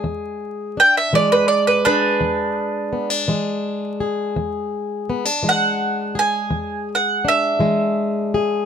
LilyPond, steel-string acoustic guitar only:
\new Staff \with { instrumentName = "Steel-string acoustic guitar" } { \clef bass \time 12/8 \key e \mixolydian \tempo 4. = 56 << { r4 d'8 gis4 gis'4. b16 d'16 gis4 gis'8 | r4 b16 d'16 gis4 gis'4. d'8 gis4 gis'8 | } \\ { e,4 r8 e4 r8 e,4 r8 e4 r8 | e,4 r8 e4 r8 e,4 r8 e4 r8 | } >> }